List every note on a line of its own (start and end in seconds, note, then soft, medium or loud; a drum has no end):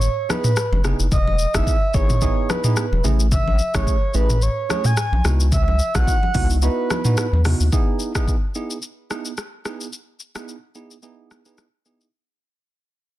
0.00 0.30 C#5 loud
0.00 shaker medium
0.29 0.50 B3 medium
0.29 0.51 D#4 medium
0.29 0.51 E4 medium
0.29 0.51 G#4 medium
0.29 0.81 B4 medium
0.29 cross-stick loud
0.29 high conga medium
0.29 shaker medium
0.44 mid tom medium
0.44 shaker medium
0.57 cross-stick loud
0.57 shaker medium
0.72 0.94 F#1 medium
0.72 high conga medium
0.84 1.06 B3 medium
0.84 1.06 D#4 medium
0.84 1.06 E4 medium
0.84 1.06 G#4 medium
0.84 cross-stick medium
0.84 low conga medium
0.84 shaker medium
0.99 1.09 F#1 loud
0.99 shaker medium
1.12 1.46 E1 loud
1.12 1.56 D#5 loud
1.12 kick loud
1.12 low conga medium
1.12 shaker medium
1.27 high conga medium
1.39 shaker medium
1.54 1.64 F#1 loud
1.54 1.74 B3 medium
1.54 1.74 D#4 medium
1.54 1.75 E4 medium
1.54 1.75 G#4 medium
1.54 1.96 E5 loud
1.54 kick loud
1.54 cross-stick loud
1.54 high conga medium
1.54 shaker medium
1.67 kick medium
1.67 shaker medium
1.94 2.29 G#1 medium
1.94 2.16 B3 medium
1.94 2.16 D#4 medium
1.94 2.16 E4 medium
1.94 2.16 G#4 medium
1.94 2.51 C#5 loud
1.94 kick loud
1.94 shaker soft
2.10 mid tom loud
2.10 shaker medium
2.21 2.61 B3 loud
2.21 2.61 D#4 medium
2.21 2.61 E4 medium
2.21 2.61 G#4 loud
2.21 kick loud
2.21 shaker medium
2.50 3.05 B4 medium
2.50 cross-stick loud
2.50 high conga medium
2.50 shaker medium
2.64 2.84 B3 medium
2.64 2.84 D#4 medium
2.64 2.85 E4 medium
2.64 2.85 G#4 medium
2.64 mid tom medium
2.64 shaker medium
2.76 cross-stick medium
2.76 shaker medium
2.92 3.02 E1 medium
2.92 high conga medium
3.04 3.61 A1 loud
3.04 3.26 A3 medium
3.04 3.26 C#4 medium
3.04 3.26 E4 medium
3.04 3.26 G#4 medium
3.04 low conga medium
3.04 shaker medium
3.20 shaker medium
3.32 3.77 E5 loud
3.32 kick loud
3.32 low conga medium
3.32 shaker medium
3.48 high conga medium
3.59 shaker medium
3.74 3.85 G#1 medium
3.74 3.94 A3 medium
3.74 3.95 C#4 medium
3.74 3.95 E4 medium
3.74 3.95 G#4 medium
3.74 4.15 C#5 loud
3.74 kick loud
3.74 cross-stick loud
3.74 high conga medium
3.74 shaker medium
3.87 kick medium
3.87 shaker medium
4.14 4.49 A1 medium
4.14 4.36 A3 medium
4.14 4.36 C#4 medium
4.14 4.36 E4 medium
4.14 4.36 G#4 medium
4.14 4.44 B4 medium
4.14 shaker soft
4.30 mid tom loud
4.30 shaker medium
4.42 4.69 C#5 loud
4.42 shaker medium
4.69 4.91 A3 medium
4.69 4.91 C#4 medium
4.69 4.91 E4 medium
4.69 4.91 G#4 medium
4.69 4.87 C#5 loud
4.69 cross-stick loud
4.69 high conga medium
4.69 shaker medium
4.84 5.25 G#5 loud
4.84 mid tom loud
4.84 shaker medium
4.97 cross-stick medium
4.97 shaker medium
5.12 5.22 B1 medium
5.12 high conga medium
5.24 5.81 C#2 loud
5.24 5.46 B3 medium
5.24 5.46 D#4 medium
5.24 5.46 E4 medium
5.24 5.46 F#4 medium
5.24 cross-stick medium
5.24 low conga medium
5.24 shaker medium
5.40 shaker medium
5.52 5.97 E5 loud
5.52 kick loud
5.52 low conga medium
5.52 shaker medium
5.68 high conga medium
5.79 shaker medium
5.95 6.05 B1 medium
5.95 6.15 B3 medium
5.95 6.15 D#4 medium
5.95 6.15 E4 medium
5.95 6.15 F#4 medium
5.95 6.34 F#5 loud
5.95 kick loud
5.95 cross-stick loud
5.95 high conga medium
5.95 shaker medium
6.07 kick loud
6.07 shaker medium
6.23 high conga medium
6.34 6.69 C#2 medium
6.34 6.56 B3 medium
6.34 6.56 D#4 medium
6.34 6.56 E4 medium
6.34 6.56 F#4 medium
6.34 6.47 F#5 loud
6.34 kick loud
6.34 open hi-hat medium
6.34 low conga medium
6.34 shaker soft
6.50 shaker medium
6.62 7.01 B3 medium
6.62 7.01 D#4 medium
6.62 7.01 E4 medium
6.62 7.02 F#4 loud
6.62 7.41 B4 loud
6.62 shaker medium
6.90 cross-stick loud
6.90 high conga medium
6.90 shaker medium
7.05 7.25 B3 medium
7.05 7.25 D#4 medium
7.05 7.25 E4 medium
7.05 7.25 F#4 medium
7.05 mid tom medium
7.05 shaker medium
7.17 cross-stick loud
7.17 shaker medium
7.33 7.55 E2 loud
7.33 high conga medium
7.45 7.66 B3 medium
7.45 7.66 D#4 medium
7.45 7.67 E4 medium
7.45 7.67 F#4 medium
7.45 cross-stick medium
7.45 open hi-hat medium
7.45 low conga medium
7.45 shaker medium
7.60 7.70 D#2 loud
7.60 shaker medium
7.72 8.11 B3 medium
7.72 8.11 D#4 medium
7.72 8.12 E4 medium
7.72 8.12 G#4 loud
7.72 kick loud
7.72 shaker medium
8.00 shaker medium
8.15 8.35 B3 medium
8.15 8.35 D#4 medium
8.15 8.35 E4 medium
8.15 8.35 G#4 medium
8.15 kick loud
8.15 cross-stick loud
8.15 shaker medium
8.28 kick medium
8.28 shaker medium
8.55 8.76 B3 medium
8.55 8.77 D#4 medium
8.55 8.77 E4 medium
8.55 8.77 G#4 medium
8.55 shaker soft
8.71 shaker medium
8.82 shaker medium
9.10 9.31 B3 medium
9.10 9.32 D#4 medium
9.10 9.32 E4 medium
9.10 9.32 G#4 medium
9.10 cross-stick medium
9.10 shaker soft
9.25 shaker medium
9.37 cross-stick medium
9.37 shaker medium
9.65 9.86 B3 medium
9.65 9.87 D#4 medium
9.65 9.87 E4 medium
9.65 9.87 G#4 medium
9.65 cross-stick medium
9.65 shaker medium
9.81 shaker medium
9.93 shaker medium
10.20 shaker medium
10.35 10.55 B3 medium
10.35 10.55 D#4 medium
10.35 10.55 E4 medium
10.35 10.55 G#4 medium
10.35 cross-stick loud
10.35 shaker medium
10.49 shaker medium
10.75 10.96 B3 medium
10.75 10.97 D#4 medium
10.75 10.97 E4 medium
10.75 10.97 G#4 medium
10.75 shaker soft
10.91 shaker medium
11.03 11.42 B3 medium
11.03 11.42 D#4 medium
11.03 11.42 E4 medium
11.03 11.42 G#4 medium
11.03 shaker medium
11.31 cross-stick medium
11.31 shaker medium
11.45 11.65 B3 medium
11.45 11.65 D#4 medium
11.45 11.66 E4 medium
11.45 11.66 G#4 medium
11.45 shaker medium
11.58 cross-stick medium
11.58 shaker medium
11.86 12.07 B3 medium
11.86 12.07 D#4 medium
11.86 12.07 E4 medium
11.86 12.07 G#4 medium
11.86 shaker medium
12.01 shaker medium